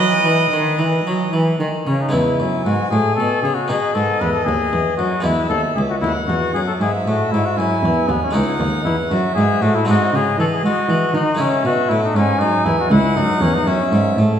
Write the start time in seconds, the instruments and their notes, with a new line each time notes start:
Already playing: harpsichord F#3 B3 F#4, cello F#3, trumpet B4, violin D#5
0.23 cello E3, harpsichord E3
0.51 cello D#3, harpsichord D#3
0.78 cello E3, harpsichord E3
1.05 cello F#3, harpsichord F#3
1.32 cello E3, harpsichord E3
1.59 cello D#3, harpsichord D#3
1.86 cello C#3, harpsichord C#3, trumpet C#4
2.01 trumpet D#4
2.09 harpsichord G#3 B3 E4
2.13 harpsichord E2, cello E2, trumpet E4, violin G#5
2.40 harpsichord F#2, cello F#2
2.64 cello G#2, harpsichord G#2, trumpet F#4
2.91 cello A2, harpsichord A2, trumpet G#4
3.15 cello B2, trumpet A4
3.20 harpsichord B2
3.43 cello C#3, harpsichord C#3, trumpet G#4
3.54 trumpet F#4
3.68 cello B2, harpsichord B2 B3 D#4, trumpet G#4, violin D#5
3.95 cello G#2, harpsichord G#2, trumpet A4
4.21 cello E2, harpsichord E2, trumpet B4
4.33 trumpet A4
4.45 cello D#2, harpsichord D#2, trumpet G#4
4.73 harpsichord E2, cello E2
4.97 cello F#2, harpsichord F#2, trumpet F#4
5.21 cello E2, harpsichord G#3 B3 E4, trumpet E4, violin E5
5.25 harpsichord E2
5.49 cello D#2, harpsichord D#2, trumpet A4
5.75 cello C#2, harpsichord C#2, trumpet G#4
5.90 trumpet F#4
6.01 cello D#2, harpsichord D#2, trumpet E4, violin F#5
6.28 cello E2, harpsichord E2, trumpet F#4
6.54 cello F#2, harpsichord F#2, trumpet G#4
6.67 trumpet A4
6.80 cello G#2, harpsichord G#2, trumpet G#4, violin E5
7.05 cello A2, harpsichord A2, trumpet F#4
7.32 cello G#2, harpsichord G#2, trumpet E4
7.46 trumpet F#4
7.57 cello F#2, harpsichord F#2, trumpet E4, violin G#5
7.83 cello E2, harpsichord E2
8.09 cello D#2, harpsichord D#2, trumpet B3
8.23 trumpet C#4
8.31 cello C#2, harpsichord G#3 C#4 E4, trumpet D#4, violin F#5
8.36 harpsichord C#2
8.60 cello D#2, harpsichord D#2
8.84 cello E2, harpsichord E2, trumpet E4
9.10 cello F#2, harpsichord F#2, trumpet F#4, violin E5
9.35 cello G#2, harpsichord G#2, trumpet G#4
9.62 cello A2, harpsichord A2, trumpet F#4
9.75 trumpet E4
9.85 cello G#2, harpsichord G#3 C4 D#4, trumpet F#4, violin D#5
9.89 harpsichord G#2
10.13 cello C#3, harpsichord C#3, trumpet G#4
10.38 cello E3, harpsichord E3, trumpet A4
10.53 trumpet G#4
10.63 cello G#3, harpsichord G#3, trumpet F#4
10.89 cello E3, harpsichord E3
11.14 cello D#3, harpsichord D#3, trumpet D#4
11.35 harpsichord G#3 C#4 E4, violin E5
11.39 cello C#3, harpsichord C#3, trumpet C#4
11.64 cello B2, harpsichord B2, trumpet F#4
11.89 cello A2, harpsichord A2, trumpet E4
12.03 trumpet D#4
12.15 cello G#2, harpsichord G#2, trumpet C#4, violin G#5
12.39 cello F#2, harpsichord F#2, trumpet D#4
12.65 cello E2, harpsichord E2, trumpet E4
12.79 trumpet F#4
12.90 cello C#2, harpsichord C#2, trumpet E4, violin F#5
13.16 cello F#2, harpsichord F#2, trumpet D#4
13.41 cello E2, harpsichord E2, trumpet C#4
13.54 trumpet D#4
13.66 cello F#2, harpsichord F#2, trumpet C#4, violin E5
13.92 cello G#2, harpsichord G#2
14.17 cello A2, harpsichord A2